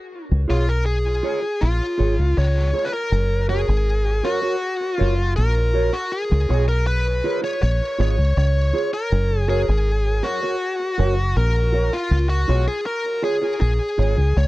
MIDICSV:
0, 0, Header, 1, 5, 480
1, 0, Start_track
1, 0, Key_signature, 6, "major"
1, 0, Tempo, 749625
1, 74, Time_signature, 4, 2, 24, 8
1, 9269, End_track
2, 0, Start_track
2, 0, Title_t, "Clean electric guitar"
2, 0, Program_c, 0, 27
2, 306, Note_on_c, 0, 65, 83
2, 307, Note_on_c, 0, 68, 79
2, 313, Note_on_c, 0, 73, 91
2, 412, Note_off_c, 0, 65, 0
2, 413, Note_off_c, 0, 68, 0
2, 416, Note_off_c, 0, 73, 0
2, 787, Note_on_c, 0, 65, 86
2, 795, Note_on_c, 0, 68, 90
2, 796, Note_on_c, 0, 73, 91
2, 893, Note_off_c, 0, 65, 0
2, 896, Note_off_c, 0, 68, 0
2, 897, Note_off_c, 0, 73, 0
2, 1265, Note_on_c, 0, 65, 79
2, 1270, Note_on_c, 0, 68, 81
2, 1275, Note_on_c, 0, 73, 84
2, 1371, Note_off_c, 0, 65, 0
2, 1374, Note_off_c, 0, 68, 0
2, 1376, Note_off_c, 0, 73, 0
2, 1749, Note_on_c, 0, 65, 76
2, 1756, Note_on_c, 0, 68, 87
2, 1762, Note_on_c, 0, 73, 83
2, 1853, Note_off_c, 0, 65, 0
2, 1857, Note_off_c, 0, 68, 0
2, 1860, Note_off_c, 0, 73, 0
2, 2232, Note_on_c, 0, 66, 89
2, 2237, Note_on_c, 0, 70, 94
2, 2240, Note_on_c, 0, 73, 90
2, 2335, Note_off_c, 0, 66, 0
2, 2337, Note_off_c, 0, 70, 0
2, 2339, Note_off_c, 0, 73, 0
2, 2711, Note_on_c, 0, 66, 85
2, 2716, Note_on_c, 0, 70, 99
2, 2719, Note_on_c, 0, 73, 95
2, 2814, Note_off_c, 0, 66, 0
2, 2817, Note_off_c, 0, 70, 0
2, 2818, Note_off_c, 0, 73, 0
2, 2828, Note_on_c, 0, 73, 68
2, 2835, Note_on_c, 0, 70, 60
2, 2837, Note_on_c, 0, 66, 50
2, 2909, Note_off_c, 0, 73, 0
2, 2913, Note_off_c, 0, 70, 0
2, 2914, Note_off_c, 0, 66, 0
2, 3188, Note_on_c, 0, 66, 89
2, 3193, Note_on_c, 0, 70, 90
2, 3197, Note_on_c, 0, 73, 100
2, 3293, Note_off_c, 0, 66, 0
2, 3295, Note_off_c, 0, 70, 0
2, 3297, Note_off_c, 0, 73, 0
2, 3673, Note_on_c, 0, 66, 79
2, 3680, Note_on_c, 0, 70, 91
2, 3681, Note_on_c, 0, 73, 92
2, 3775, Note_off_c, 0, 66, 0
2, 3779, Note_off_c, 0, 70, 0
2, 3779, Note_off_c, 0, 73, 0
2, 4155, Note_on_c, 0, 65, 75
2, 4160, Note_on_c, 0, 68, 90
2, 4161, Note_on_c, 0, 73, 96
2, 4256, Note_off_c, 0, 65, 0
2, 4258, Note_off_c, 0, 68, 0
2, 4259, Note_off_c, 0, 73, 0
2, 4636, Note_on_c, 0, 65, 94
2, 4641, Note_on_c, 0, 68, 84
2, 4645, Note_on_c, 0, 73, 90
2, 4736, Note_off_c, 0, 65, 0
2, 4739, Note_off_c, 0, 68, 0
2, 4741, Note_off_c, 0, 73, 0
2, 4749, Note_on_c, 0, 73, 66
2, 4755, Note_on_c, 0, 68, 59
2, 4760, Note_on_c, 0, 65, 57
2, 4830, Note_off_c, 0, 73, 0
2, 4833, Note_off_c, 0, 68, 0
2, 4835, Note_off_c, 0, 65, 0
2, 5112, Note_on_c, 0, 65, 92
2, 5118, Note_on_c, 0, 68, 93
2, 5123, Note_on_c, 0, 73, 108
2, 5215, Note_off_c, 0, 65, 0
2, 5217, Note_off_c, 0, 68, 0
2, 5220, Note_off_c, 0, 73, 0
2, 5592, Note_on_c, 0, 65, 85
2, 5596, Note_on_c, 0, 68, 87
2, 5600, Note_on_c, 0, 73, 79
2, 5694, Note_off_c, 0, 65, 0
2, 5696, Note_off_c, 0, 68, 0
2, 5698, Note_off_c, 0, 73, 0
2, 6071, Note_on_c, 0, 66, 90
2, 6073, Note_on_c, 0, 70, 99
2, 6079, Note_on_c, 0, 73, 110
2, 6173, Note_off_c, 0, 66, 0
2, 6175, Note_off_c, 0, 70, 0
2, 6178, Note_off_c, 0, 73, 0
2, 6550, Note_on_c, 0, 66, 87
2, 6557, Note_on_c, 0, 70, 88
2, 6559, Note_on_c, 0, 73, 90
2, 6653, Note_off_c, 0, 66, 0
2, 6656, Note_off_c, 0, 70, 0
2, 6658, Note_off_c, 0, 73, 0
2, 6676, Note_on_c, 0, 73, 64
2, 6679, Note_on_c, 0, 70, 59
2, 6684, Note_on_c, 0, 66, 53
2, 6753, Note_off_c, 0, 73, 0
2, 6754, Note_off_c, 0, 70, 0
2, 6757, Note_off_c, 0, 66, 0
2, 7030, Note_on_c, 0, 66, 88
2, 7033, Note_on_c, 0, 70, 91
2, 7039, Note_on_c, 0, 73, 104
2, 7133, Note_off_c, 0, 66, 0
2, 7135, Note_off_c, 0, 70, 0
2, 7138, Note_off_c, 0, 73, 0
2, 7507, Note_on_c, 0, 66, 81
2, 7513, Note_on_c, 0, 70, 88
2, 7518, Note_on_c, 0, 73, 92
2, 7612, Note_off_c, 0, 66, 0
2, 7614, Note_off_c, 0, 70, 0
2, 7617, Note_off_c, 0, 73, 0
2, 7990, Note_on_c, 0, 65, 92
2, 7996, Note_on_c, 0, 68, 94
2, 7999, Note_on_c, 0, 73, 110
2, 8093, Note_off_c, 0, 65, 0
2, 8096, Note_off_c, 0, 68, 0
2, 8097, Note_off_c, 0, 73, 0
2, 8467, Note_on_c, 0, 65, 90
2, 8472, Note_on_c, 0, 68, 81
2, 8474, Note_on_c, 0, 73, 87
2, 8571, Note_off_c, 0, 65, 0
2, 8574, Note_off_c, 0, 68, 0
2, 8575, Note_off_c, 0, 73, 0
2, 8589, Note_on_c, 0, 73, 63
2, 8594, Note_on_c, 0, 68, 66
2, 8599, Note_on_c, 0, 65, 55
2, 8669, Note_off_c, 0, 73, 0
2, 8672, Note_off_c, 0, 68, 0
2, 8674, Note_off_c, 0, 65, 0
2, 8950, Note_on_c, 0, 65, 81
2, 8954, Note_on_c, 0, 68, 87
2, 8958, Note_on_c, 0, 73, 95
2, 9053, Note_off_c, 0, 65, 0
2, 9055, Note_off_c, 0, 68, 0
2, 9057, Note_off_c, 0, 73, 0
2, 9269, End_track
3, 0, Start_track
3, 0, Title_t, "Lead electric guitar"
3, 0, Program_c, 1, 29
3, 323, Note_on_c, 1, 65, 83
3, 442, Note_on_c, 1, 70, 96
3, 443, Note_off_c, 1, 65, 0
3, 547, Note_off_c, 1, 70, 0
3, 550, Note_on_c, 1, 68, 99
3, 1031, Note_on_c, 1, 65, 78
3, 1046, Note_off_c, 1, 68, 0
3, 1525, Note_on_c, 1, 73, 96
3, 1727, Note_off_c, 1, 65, 0
3, 1826, Note_on_c, 1, 71, 72
3, 1845, Note_off_c, 1, 73, 0
3, 1873, Note_off_c, 1, 71, 0
3, 1879, Note_on_c, 1, 70, 93
3, 2211, Note_off_c, 1, 70, 0
3, 2237, Note_on_c, 1, 68, 104
3, 2719, Note_on_c, 1, 66, 93
3, 2729, Note_off_c, 1, 68, 0
3, 3180, Note_off_c, 1, 66, 0
3, 3180, Note_on_c, 1, 65, 93
3, 3411, Note_off_c, 1, 65, 0
3, 3434, Note_on_c, 1, 70, 103
3, 3797, Note_on_c, 1, 66, 90
3, 3806, Note_off_c, 1, 70, 0
3, 3918, Note_off_c, 1, 66, 0
3, 3919, Note_on_c, 1, 68, 112
3, 4252, Note_off_c, 1, 68, 0
3, 4282, Note_on_c, 1, 70, 96
3, 4396, Note_off_c, 1, 70, 0
3, 4399, Note_on_c, 1, 71, 107
3, 4732, Note_off_c, 1, 71, 0
3, 4766, Note_on_c, 1, 73, 103
3, 4871, Note_off_c, 1, 73, 0
3, 4882, Note_on_c, 1, 73, 108
3, 5124, Note_off_c, 1, 73, 0
3, 5132, Note_on_c, 1, 73, 104
3, 5358, Note_off_c, 1, 73, 0
3, 5366, Note_on_c, 1, 73, 100
3, 5696, Note_off_c, 1, 73, 0
3, 5722, Note_on_c, 1, 70, 100
3, 6010, Note_off_c, 1, 70, 0
3, 6010, Note_on_c, 1, 68, 100
3, 6078, Note_off_c, 1, 68, 0
3, 6080, Note_on_c, 1, 68, 101
3, 6553, Note_on_c, 1, 66, 98
3, 6571, Note_off_c, 1, 68, 0
3, 7279, Note_on_c, 1, 70, 99
3, 7294, Note_off_c, 1, 66, 0
3, 7640, Note_on_c, 1, 65, 86
3, 7647, Note_off_c, 1, 70, 0
3, 7860, Note_off_c, 1, 65, 0
3, 7873, Note_on_c, 1, 66, 81
3, 8096, Note_off_c, 1, 66, 0
3, 8119, Note_on_c, 1, 68, 92
3, 8234, Note_off_c, 1, 68, 0
3, 8236, Note_on_c, 1, 70, 103
3, 8476, Note_off_c, 1, 70, 0
3, 8478, Note_on_c, 1, 68, 89
3, 8698, Note_off_c, 1, 68, 0
3, 8713, Note_on_c, 1, 68, 100
3, 9204, Note_on_c, 1, 73, 104
3, 9206, Note_off_c, 1, 68, 0
3, 9269, Note_off_c, 1, 73, 0
3, 9269, End_track
4, 0, Start_track
4, 0, Title_t, "Fingered electric bass"
4, 0, Program_c, 2, 33
4, 201, Note_on_c, 2, 37, 96
4, 309, Note_off_c, 2, 37, 0
4, 320, Note_on_c, 2, 35, 88
4, 771, Note_off_c, 2, 35, 0
4, 1042, Note_on_c, 2, 34, 86
4, 1151, Note_off_c, 2, 34, 0
4, 1280, Note_on_c, 2, 32, 85
4, 1390, Note_off_c, 2, 32, 0
4, 1401, Note_on_c, 2, 37, 80
4, 1508, Note_off_c, 2, 37, 0
4, 1522, Note_on_c, 2, 37, 94
4, 1741, Note_off_c, 2, 37, 0
4, 1997, Note_on_c, 2, 30, 99
4, 2331, Note_off_c, 2, 30, 0
4, 2359, Note_on_c, 2, 32, 94
4, 2690, Note_off_c, 2, 32, 0
4, 3206, Note_on_c, 2, 30, 83
4, 3423, Note_off_c, 2, 30, 0
4, 3445, Note_on_c, 2, 34, 88
4, 3775, Note_off_c, 2, 34, 0
4, 4044, Note_on_c, 2, 37, 104
4, 4150, Note_off_c, 2, 37, 0
4, 4162, Note_on_c, 2, 35, 97
4, 4612, Note_off_c, 2, 35, 0
4, 4884, Note_on_c, 2, 34, 91
4, 4991, Note_off_c, 2, 34, 0
4, 5119, Note_on_c, 2, 32, 98
4, 5229, Note_off_c, 2, 32, 0
4, 5240, Note_on_c, 2, 37, 92
4, 5348, Note_off_c, 2, 37, 0
4, 5360, Note_on_c, 2, 37, 97
4, 5579, Note_off_c, 2, 37, 0
4, 5840, Note_on_c, 2, 30, 107
4, 6172, Note_off_c, 2, 30, 0
4, 6202, Note_on_c, 2, 32, 91
4, 6531, Note_off_c, 2, 32, 0
4, 7038, Note_on_c, 2, 30, 92
4, 7258, Note_off_c, 2, 30, 0
4, 7278, Note_on_c, 2, 34, 99
4, 7610, Note_off_c, 2, 34, 0
4, 7755, Note_on_c, 2, 37, 97
4, 7976, Note_off_c, 2, 37, 0
4, 7997, Note_on_c, 2, 35, 94
4, 8107, Note_off_c, 2, 35, 0
4, 8718, Note_on_c, 2, 34, 92
4, 8827, Note_off_c, 2, 34, 0
4, 8956, Note_on_c, 2, 32, 91
4, 9066, Note_off_c, 2, 32, 0
4, 9075, Note_on_c, 2, 37, 79
4, 9184, Note_off_c, 2, 37, 0
4, 9198, Note_on_c, 2, 37, 98
4, 9269, Note_off_c, 2, 37, 0
4, 9269, End_track
5, 0, Start_track
5, 0, Title_t, "Muted clean electric guitar strokes"
5, 910, Note_on_c, 9, 29, 40
5, 974, Note_off_c, 9, 29, 0
5, 3312, Note_on_c, 9, 29, 55
5, 3376, Note_off_c, 9, 29, 0
5, 5237, Note_on_c, 9, 29, 43
5, 5301, Note_off_c, 9, 29, 0
5, 7149, Note_on_c, 9, 29, 42
5, 7213, Note_off_c, 9, 29, 0
5, 9080, Note_on_c, 9, 29, 45
5, 9144, Note_off_c, 9, 29, 0
5, 9269, End_track
0, 0, End_of_file